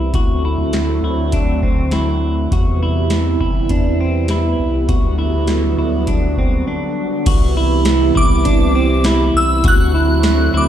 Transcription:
Already playing: analog synth bass C2, analog synth pad C3 E3 G3 B3 E4, clean electric guitar E4
0.13 analog synth bass D2, analog synth pad D3 F#3 A3 C4 F#4, clean electric guitar F#4, kick, closed hi-hat
0.45 clean electric guitar E4
0.58 analog synth bass D2
0.73 snare, closed hi-hat
1.03 analog synth bass D2, clean electric guitar E4
1.32 clean electric guitar D4, kick, closed hi-hat
1.62 clean electric guitar C4, kick
1.91 clean electric guitar E4, snare, closed hi-hat
2.51 analog synth bass E2, analog synth pad C3 E3 G3 B3 E4, clean electric guitar F#4, kick, closed hi-hat
2.83 clean electric guitar E4
3.10 snare, closed hi-hat
3.40 analog synth bass G1, clean electric guitar E4, kick
3.69 analog synth bass E2, clean electric guitar D4, kick, closed hi-hat
4.01 clean electric guitar C4
4.28 clean electric guitar E4, snare, closed hi-hat
4.60 analog synth bass C2
4.88 analog synth bass D2, analog synth pad D3 F#3 F#4, clean electric guitar F#4, kick, closed hi-hat
5.19 clean electric guitar E4
5.33 analog synth bass D2
5.47 snare, closed hi-hat
5.78 analog synth bass D2, clean electric guitar E4
6.07 clean electric guitar D4, kick, closed hi-hat
6.37 clean electric guitar C4, kick
6.67 clean electric guitar D4
7.26 analog synth bass C2, analog synth pad C3 E3 G3 B3 E4, clean electric guitar F#4, kick, closed hi-hat, crash
7.57 clean electric guitar E4
7.85 snare, closed hi-hat, tambourine
8.15 analog synth bass C2, clean electric guitar E4, synth bell D6, kick
8.45 analog synth bass C2, clean electric guitar D4, kick, closed hi-hat
8.75 clean electric guitar C4
9.04 clean electric guitar E4, snare, closed hi-hat, tambourine
9.35 analog synth bass C2, synth bell E6
9.64 analog synth bass D2, analog synth pad D3 F#3 A3 C4 F#4, clean electric guitar F#4, kick, closed hi-hat
9.68 synth bell F#6
9.94 clean electric guitar E4
10.23 snare, closed hi-hat, tambourine
10.54 analog synth bass D2, clean electric guitar E4, synth bell D6

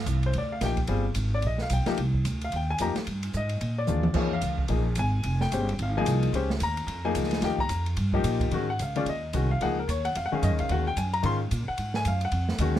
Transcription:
0.06 upright bass C2, hi-hat pedal, ride
0.23 grand piano C5, ride
0.33 upright bass D2, ride
0.38 grand piano D5
0.52 grand piano F5
0.61 upright bass A#1, grand piano F3 A#3 D#4 G4 G5, snare, hi-hat pedal, ride
0.77 kick, ride
0.87 upright bass G1, grand piano G3 C4 F4 G#4, ride
1.15 upright bass G#1, hi-hat pedal, ride
1.34 grand piano D5
1.42 upright bass A#1, ride
1.47 grand piano D#5
1.58 snare
1.62 grand piano F5
1.70 upright bass B1, grand piano G5, hi-hat pedal, ride
1.86 grand piano F3 A#3 D#4 G4, muted upright bass stroke, snare, ride
1.97 upright bass C2, ride
2.14 kick
2.25 upright bass D2, hi-hat pedal, ride
2.41 grand piano F5, ride
2.52 upright bass D#2, ride
2.56 grand piano G5
2.70 grand piano G#5
2.78 upright bass F2, grand piano F3 A#3 D#4 G4 A#5, hi-hat pedal, ride
2.96 muted upright bass stroke, snare, ride
3.07 upright bass G2, ride
3.23 ride
3.33 upright bass G#2, grand piano D#5, hi-hat pedal
3.49 ride
3.61 upright bass A#2, ride
3.78 grand piano D5
3.87 upright bass D#2, grand piano D#3 G#3 D4 F4, hi-hat pedal, mid tom
4.03 mid tom
4.14 upright bass F2, grand piano F3 A#3 D#4 G#4 C5, kick, crash
4.19 grand piano C#5
4.33 grand piano F5
4.41 upright bass C#2, hi-hat pedal, ride
4.58 kick
4.68 upright bass A#1, grand piano F3 A#3 D#4 G#4, ride
4.95 upright bass G#1, grand piano G#5, hi-hat pedal, ride
5.23 upright bass F1, ride
5.41 grand piano G5, snare
5.52 upright bass G1, grand piano G#3 C#4 G4 C5, hi-hat pedal, ride
5.69 ride
5.79 upright bass G#1, grand piano F5, ride
5.97 grand piano F3 A#3 D#4 G#4 G#5
6.05 upright bass C2, hi-hat pedal, ride
6.23 ride
6.33 upright bass C#2, grand piano G#3 C#4 G4 C5, ride
6.50 snare
6.60 upright bass D#2, grand piano A#5, hi-hat pedal, ride
6.77 ride
6.87 upright bass F2, ride
7.05 grand piano F3 A#3 D#4 G#4 G#5
7.15 upright bass C#2, hi-hat pedal, ride
7.24 snare
7.31 snare, ride
7.42 upright bass D#2, grand piano F3 A#3 D#4 G4 G5, snare, ride
7.58 grand piano A#5, kick
7.69 upright bass F2, hi-hat pedal, ride
7.86 ride
7.97 upright bass G2, ride
8.13 grand piano F3 A#3 D#4 G4, kick
8.24 upright bass A#2, hi-hat pedal, ride
8.40 kick, ride
8.51 upright bass G#2, grand piano D#3 G#3 C#4 F#4, ride
8.70 grand piano F#5
8.79 upright bass C#2, grand piano F5, hi-hat pedal, ride
8.96 grand piano D#3 G#3 C#4 F4 D5, ride
9.06 upright bass D#2, grand piano D#5, ride
9.33 upright bass C2, grand piano D#3 G#3 C#4 F#4, hi-hat pedal, ride
9.51 grand piano F5
9.60 upright bass C#2, grand piano F3 A#3 D#4 G#4 F#5, ride
9.79 grand piano A#4
9.88 upright bass D#2, grand piano C#5, hi-hat pedal, ride
10.05 grand piano F#5, ride
10.15 upright bass F2, grand piano F5, ride
10.26 grand piano F#5
10.32 grand piano D#3 G#3 C#4 G#4 F5, muted upright bass stroke
10.42 upright bass F#2, grand piano D#5, hi-hat pedal, ride
10.51 upright bass D#2
10.59 upright bass C#2, grand piano F5, ride
10.69 upright bass D#2, grand piano D#3 G#3 C#4 F#4 F#5, ride
10.87 grand piano G5
10.97 upright bass F#2, grand piano G#5, hi-hat pedal, ride
11.13 grand piano A#5, ride
11.23 upright bass G#2, grand piano D#3 G#3 C#4 F4 C6, ride
11.51 upright bass A#2, hi-hat pedal, ride
11.68 grand piano F#5, muted upright bass stroke
11.78 upright bass G#2, ride
11.94 grand piano G#5, snare
12.05 upright bass F#2, grand piano F5, hi-hat pedal, ride
12.21 grand piano F#5, ride
12.32 upright bass F2, ride
12.49 snare
12.58 upright bass D#2, grand piano D#3 G#3 C#4 F#4, hi-hat pedal, ride
12.76 snare

